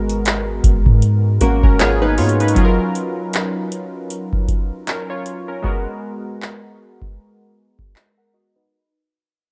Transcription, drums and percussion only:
0.09 closed hi-hat
0.25 clap, closed hi-hat
0.64 kick, closed hi-hat
0.86 kick
1.02 closed hi-hat
1.41 closed hi-hat
1.63 kick
1.79 clap, closed hi-hat
2.18 closed hi-hat, open hi-hat
2.29 closed hi-hat
2.40 closed hi-hat
2.48 closed hi-hat
2.56 kick, closed hi-hat
2.95 closed hi-hat
3.33 clap, closed hi-hat
3.72 closed hi-hat
4.10 closed hi-hat
4.33 kick
4.48 kick, closed hi-hat
4.87 clap, closed hi-hat
5.26 closed hi-hat
5.64 kick
6.42 clap
7.02 kick
7.79 kick
7.96 clap

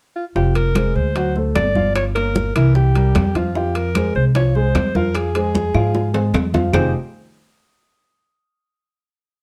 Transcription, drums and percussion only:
0.36 high bongo, high conga
0.55 high bongo, high conga, high timbale
0.75 high bongo, high conga, high timbale, low timbale, claves
0.96 high conga
1.16 high bongo, high conga, high timbale
1.36 high bongo, high conga
1.55 high bongo, low bongo, high conga, high timbale, low timbale, claves
1.75 high bongo, high conga
1.95 high bongo, high conga, high timbale, claves
2.15 high bongo, high conga, high timbale
2.35 high bongo, high conga, low timbale
2.56 high conga, high timbale, claves
2.75 high bongo, high conga
2.95 high bongo, high conga, high timbale
3.15 high bongo, low bongo, high conga, high timbale, low timbale, claves
3.35 high bongo, high conga, high timbale
3.55 high bongo, high conga
3.75 high bongo, high conga, high timbale
3.95 high bongo, high conga, high timbale, low timbale, claves
4.15 high conga
4.35 high bongo, high conga, high timbale
4.55 high bongo, high conga
4.75 high bongo, low bongo, high conga, high timbale, low timbale, claves
4.95 high bongo, high conga
5.15 high bongo, high conga, high timbale, claves
5.35 high bongo, high conga, high timbale
5.55 high bongo, high conga, low timbale
5.74 high bongo, high conga, high timbale, claves
5.95 high bongo, high conga
6.14 low bongo, high conga, low timbale
6.34 low bongo, high conga, low timbale, claves
6.54 low bongo, high conga, low timbale
6.73 low bongo, low conga, low timbale, claves

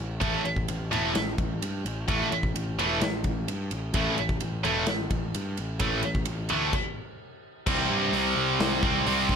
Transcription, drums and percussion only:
0.21 kick, ride
0.45 ride
0.56 kick
0.68 ride
0.93 ride
1.15 snare, ride
1.38 kick, ride
1.62 ride
1.86 ride
2.08 kick, ride
2.32 ride
2.43 kick
2.56 ride
2.79 ride
3.01 snare, ride
3.24 kick, ride
3.48 ride
3.71 ride
3.94 kick, ride
4.18 ride
4.29 kick
4.40 ride
4.65 ride
4.86 snare, ride
5.10 kick, ride
5.34 ride
5.57 ride
5.80 kick, ride
6.03 ride
6.15 kick
6.25 ride
6.49 ride
6.73 kick, crash
7.67 kick, crash
8.13 open hi-hat
8.60 snare, open hi-hat
8.83 kick
9.06 open hi-hat
9.29 kick, snare

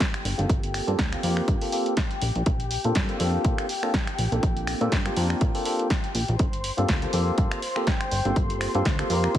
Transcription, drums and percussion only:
0.00 kick, snare, closed hi-hat
0.14 finger snap, closed hi-hat
0.25 open hi-hat
0.39 closed hi-hat
0.50 kick, closed hi-hat
0.63 closed hi-hat
0.74 finger snap, open hi-hat
0.88 closed hi-hat
0.99 kick, snare, closed hi-hat
1.13 finger snap, closed hi-hat
1.23 open hi-hat
1.37 finger snap
1.48 kick, closed hi-hat
1.61 open hi-hat
1.72 open hi-hat
1.86 closed hi-hat
1.97 kick, snare, closed hi-hat
2.11 closed hi-hat
2.22 open hi-hat
2.35 closed hi-hat
2.46 kick, closed hi-hat
2.60 closed hi-hat
2.71 open hi-hat, tambourine
2.84 closed hi-hat, tambourine
2.95 kick, snare, closed hi-hat
3.09 closed hi-hat
3.20 open hi-hat
3.45 kick, closed hi-hat
3.58 finger snap, closed hi-hat
3.69 open hi-hat
3.83 finger snap
3.94 kick, snare, closed hi-hat
4.07 finger snap, closed hi-hat
4.18 open hi-hat
4.31 closed hi-hat, tambourine
4.43 kick, closed hi-hat
4.56 closed hi-hat, tambourine
4.67 finger snap, open hi-hat, tambourine
4.81 closed hi-hat
4.92 kick, snare, closed hi-hat
5.06 finger snap, closed hi-hat
5.16 open hi-hat, tambourine
5.30 finger snap
5.41 kick, closed hi-hat
5.55 open hi-hat
5.65 open hi-hat, tambourine
5.79 closed hi-hat
5.90 kick, snare, closed hi-hat
6.04 closed hi-hat
6.15 open hi-hat, tambourine
6.28 closed hi-hat, tambourine
6.39 kick, closed hi-hat
6.53 closed hi-hat
6.64 open hi-hat, tambourine
6.78 closed hi-hat, tambourine
6.89 kick, snare, closed hi-hat
7.02 closed hi-hat
7.13 open hi-hat, tambourine
7.27 tambourine
7.38 kick, closed hi-hat
7.51 finger snap, closed hi-hat
7.62 open hi-hat, tambourine
7.76 finger snap
7.87 kick, snare, closed hi-hat
8.01 finger snap, closed hi-hat
8.11 open hi-hat, tambourine
8.25 closed hi-hat
8.36 kick, closed hi-hat
8.50 closed hi-hat
8.61 finger snap, open hi-hat
8.74 closed hi-hat, tambourine
8.85 kick, snare, closed hi-hat
8.99 finger snap, closed hi-hat
9.09 open hi-hat, tambourine
9.24 finger snap
9.35 kick, closed hi-hat

